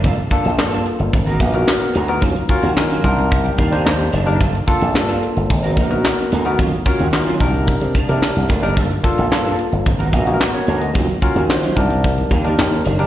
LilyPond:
<<
  \new Staff \with { instrumentName = "Tine electric piano" } { \time 4/4 \key g \minor \tempo 4 = 110 << { r1 | r4. c'''8 bes''16 g''16 f''8 ees''4 | r1 | r1 |
r2. ces''16 <bes' cis''>8 <ces'' ees''>16~ | <ces'' ees''>16 r2. r8. | } \\ { r8 <bes d' f' a'>16 r16 <bes d' f' a'>4 r8. <ces' ees' ges' bes'>8. r16 <ces' ees' ges' bes'>16 | r8 <des' f' ges' bes'>16 r16 <des' f' ges' bes'>8 <d' ees' g' bes'>4 r16 <d' ees' g' c''>8. r16 <d' ees' g' bes'>16 | r8 <bes d' f' a'>16 r16 <bes d' f' g' a'>4 r8. <ces' ees' ges' bes'>8. r16 <ces' ees' ges' bes'>16 | r8 <des' f' ges' bes'>16 r16 <des' f' ges' bes'>8 <d' ees' g' bes'>4 r16 <d' ees' g' bes'>8. r16 <d' ees' g' bes'>16 |
r8 <bes d' f' a'>16 r16 <bes d' f' a'>4 r8. <ces' ees' ges' aes' bes'>8. r8 | r8 <des' f' ges' bes'>16 r16 <des' f' ges' c''>8 <d' ees' g' bes'>4 r16 <d' ees' g' bes'>8. r16 <d' ees' g' bes'>16 | } >> }
  \new Staff \with { instrumentName = "Clean electric guitar" } { \time 4/4 \key g \minor <bes f' a'>16 r8 <bes f' a'>16 r16 <bes f' a'>16 r8. <ces' ges' bes'>16 <ces' ges' bes'>16 r8. <ces' ges' bes'>16 r16 | <ges des' f'>16 r8 <ges des' ges'>16 r16 <ges des' f'>16 r4 <ees bes d'>16 <ees bes d'>16 r8 <ees bes d'>16 <ees bes d'>16 | <bes f' a'>16 r8 <bes f' a'>16 r16 <bes f' a'>16 r8. <ces' ges' bes'>16 <ces' ges' bes'>16 r8. <ces' ges' bes'>16 r16 | <ges des' f'>16 r8 <ges des' ges'>16 r16 <ges des' f'>16 r4 <ees bes d'>16 <ees bes d'>16 r8 <ees bes d'>16 <ees bes d'>16 |
<bes f' a'>16 r8 <bes f' a'>16 r16 <bes f' a'>16 r8. <ces' ges' bes'>16 <ces' ges' bes'>16 r8. <ces' ges' bes'>16 r16 | <ges des' f'>16 r8 <ges des' ges'>16 r16 <ges des' f'>16 r4 <ees bes d'>16 <ees bes d'>16 r8 <ees bes d'>16 <ees bes d'>16 | }
  \new Staff \with { instrumentName = "Slap bass" } { \clef bass \time 4/4 \key g \minor g,,16 r8 bes,,16 g,8 r16 g,,16 aes,,8 bes,,8 r8 d,8 | ees,16 r8 ees,16 ees8 c,4 ees,8 ees,8 fis,,8 | g,,16 r8 bes,,16 g,8 r16 g,,16 aes,,8 bes,,8 r8 d,8 | ees,16 r8 ees,16 ees8 c,8. c16 r16 c16 r16 c,16 d,16 fis,,16 |
g,,16 r8 bes,,16 g,8 r16 g,,16 aes,,8 bes,,8 r8 d,8 | ees,16 r8 ees,16 ees8 c,4 ees,8 ees,8 fis,,8 | }
  \new DrumStaff \with { instrumentName = "Drums" } \drummode { \time 4/4 <hh bd>16 hh16 <hh bd>16 hh16 <hc sn>16 hh16 hh16 hh16 <hh bd>16 hh16 <hh bd>16 hh16 <hc sn>16 hh16 hh16 hh16 | <hh bd>16 hh16 <hh bd>16 hh16 <hc sn>16 hh16 <hh bd>16 hh16 <hh bd>16 hh16 <hh bd>16 hh16 <hc sn>16 hh16 hh16 hh16 | <hh bd>16 hh16 <hh bd>16 hh16 <hc sn>16 hh16 hh16 hh16 <hh bd>16 hh16 <hh bd>16 hh16 <hc sn>16 hh16 hh16 hh16 | <hh bd>16 hh16 <hh bd>16 hh16 <hc sn>16 hh16 <hh bd>16 hh16 <hh bd>16 hh16 <hh bd>16 hh16 <hc sn>16 hh16 <hh bd>16 hh16 |
<hh bd>16 hh16 <hh bd>16 hh16 <hc sn>16 hh16 hh16 hh16 <hh bd>16 hh16 <hh bd>16 hh16 <hc sn>16 hh16 hh16 hh16 | <hh bd>16 hh16 <hh bd>16 hh16 <hc sn>16 hh16 <hh bd>16 hh16 <hh bd>16 hh16 <hh bd>16 hh16 <hc sn>16 hh16 hh16 hh16 | }
>>